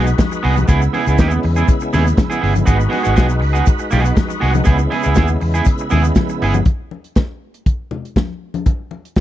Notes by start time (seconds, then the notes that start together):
Already playing: B1 G#3 D#4 F#4 B4
0.06 muted clean electric guitar stroke, closed hi-hat, shaker
0.18 muted clean electric guitar stroke, kick, snare, closed hi-hat, high conga, shaker
0.32 muted clean electric guitar stroke, shaker
0.43 C2 B3 F#4 G#4, open hi-hat
0.56 muted clean electric guitar stroke, closed hi-hat, high conga, shaker
0.68 C#2 C#3 B3 E4 G#4, kick, closed hi-hat, muted conga, shaker
0.82 muted clean electric guitar stroke, shaker
0.93 B3 E4 G#4, open hi-hat, muted conga
1.07 C#2 B3 E4 G#4, closed hi-hat, shaker
1.18 D#2 B3 E4 G#4, kick, snare, closed hi-hat, high conga, shaker
1.31 muted clean electric guitar stroke, shaker
1.43 E2, muted clean electric guitar stroke, open hi-hat
1.56 B3 E4 G#4, closed hi-hat, shaker
1.68 kick, closed hi-hat, shaker
1.80 muted clean electric guitar stroke, shaker
1.93 D#2 B3 E4 G#4, open hi-hat, muted conga, low conga, shaker
2.05 muted clean electric guitar stroke, closed hi-hat, shaker
2.17 muted clean electric guitar stroke, kick, snare, closed hi-hat, high conga, shaker
2.30 B3 E4 G#4, shaker
2.41 G1 B3 E4 G#4, open hi-hat
2.54 muted clean electric guitar stroke, closed hi-hat, high conga, shaker
2.65 G#1 G#3 B3 D#4 F#4 G#4 B4, kick, closed hi-hat, muted conga, shaker
2.79 muted clean electric guitar stroke, shaker
2.89 B3 F#4 G#4, open hi-hat, muted conga
3.03 G#1 B3 F#4 G#4, closed hi-hat, shaker
3.15 B1 B3 F#4 G#4, kick, snare, closed hi-hat, high conga, shaker
3.28 muted clean electric guitar stroke, shaker
3.40 C#2, muted clean electric guitar stroke, open hi-hat
3.53 B3 F#4 G#4, closed hi-hat, shaker
3.66 kick, closed hi-hat, shaker
3.79 muted clean electric guitar stroke, shaker
3.91 B1 B3 F#4 G#4, open hi-hat, muted conga, low conga, shaker
4.05 muted clean electric guitar stroke, closed hi-hat, shaker
4.16 muted clean electric guitar stroke, kick, snare, closed hi-hat, high conga, shaker
4.29 muted clean electric guitar stroke, shaker
4.40 C2 B3 F#4 G#4, open hi-hat
4.53 muted clean electric guitar stroke, closed hi-hat, high conga, shaker
4.64 C#2 C#3 B3 E4 G#4, kick, closed hi-hat, muted conga, shaker
4.78 muted clean electric guitar stroke, shaker
4.90 B3 E4 G#4, open hi-hat, muted conga
5.03 C#2 B3 E4 G#4, closed hi-hat, shaker
5.15 D#2 B3 E4 G#4, kick, snare, closed hi-hat, high conga, shaker
5.28 muted clean electric guitar stroke, shaker
5.41 E2, muted clean electric guitar stroke, open hi-hat
5.54 B3 E4 G#4, closed hi-hat, shaker
5.65 kick, closed hi-hat, shaker
5.78 muted clean electric guitar stroke, shaker
5.90 D#2 B3 E4 G#4, open hi-hat, muted conga, low conga, shaker
6.04 muted clean electric guitar stroke, closed hi-hat, shaker
6.15 muted clean electric guitar stroke, kick, snare, closed hi-hat, high conga, shaker
6.29 muted clean electric guitar stroke, shaker
6.42 G1 B3 E4 G#4, open hi-hat
6.54 muted clean electric guitar stroke, closed hi-hat, high conga, shaker
6.65 kick, closed hi-hat, muted conga
6.91 muted conga
7.04 closed hi-hat
7.15 kick, snare, closed hi-hat, high conga
7.54 closed hi-hat
7.66 kick, closed hi-hat, muted conga
7.91 muted conga, low conga
8.05 closed hi-hat
8.16 kick, snare, closed hi-hat, high conga
8.54 closed hi-hat, high conga
8.66 kick, closed hi-hat, muted conga
8.91 muted conga
9.05 closed hi-hat
9.16 kick, snare, closed hi-hat, high conga